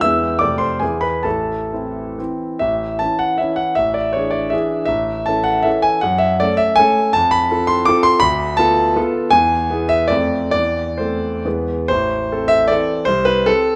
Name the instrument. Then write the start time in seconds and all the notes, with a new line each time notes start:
grand piano
0.01 E2 G#3 B3 E4 E5 E6
0.39 F2 C3 A3 D5 D6
0.43 A4
0.58 C5 C6
0.80 E2 E3 B3 E4 G#4 G#5
1.01 B4 B5
1.23 A1 A4 A5
1.73 E3 C4 E4
2.18 E3 C4 E4
2.59 A1 E5
2.99 E3 C#4 E4 A5
3.19 F#5
3.38 E3 C#4 E4 E5
3.56 F#5
3.75 A1 E5
3.94 D5
4.13 E3 D4 G#4 C#5
4.31 D5
4.50 E3 D4 G#4 E5
4.85 A1 E5
5.26 E3 C#4 A4 A5
5.44 F#5
5.63 E3 C#4 A4 E5
5.82 G#5
6.01 F#2 F#5
6.18 E5
6.40 A3 C#4 A4 D5
6.57 E5
6.76 A3 C#4 A4 G#5
7.13 F2 A5
7.31 B5
7.51 C4 F4 A4
7.67 C6
7.86 C4 F4 A4 D6
8.03 C6
8.20 D2 B5
8.57 B3 F4 A4 A5
8.96 B3 F4 A4
9.31 E2 G#5
9.70 B3 E4 G#4
9.89 E5
10.08 F2 A3 C4 A4 D5
10.51 E2 D5
10.98 A3 C4 A4 C5
11.45 E2 G#3 B3 B4
11.88 A1 C5
12.32 C4 A4
12.48 E5
12.68 E3 C4 A4 D5
13.05 C2 C5
13.25 B4
13.46 C4 A4